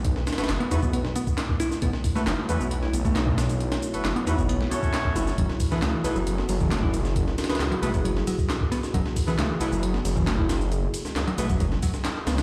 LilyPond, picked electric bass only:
\new Staff \with { instrumentName = "Picked electric bass" } { \time 4/4 \key fis \minor \tempo 4 = 135 r4 r16 b16 dis'16 b16 b16 r16 b16 r8. e'16 r16 | b16 r8 a16 dis'16 a16 a16 b8 e'16 b16 a16 dis'16 a16 r8 | r4 r16 b16 dis'16 b16 b16 r16 b16 r8. e'16 r16 | fis16 r8 e16 a16 e16 e'16 fis8 b16 fis16 e16 a16 e'16 r8 |
r4 r16 fis16 a16 fis16 fis16 r16 fis16 r8. b16 r16 | fis16 r8 e16 a16 e16 e'16 fis8 b16 fis16 e16 a16 e'16 r8 | r4 r16 fis16 a16 fis16 fis16 r16 fis16 r8. b16 r16 | }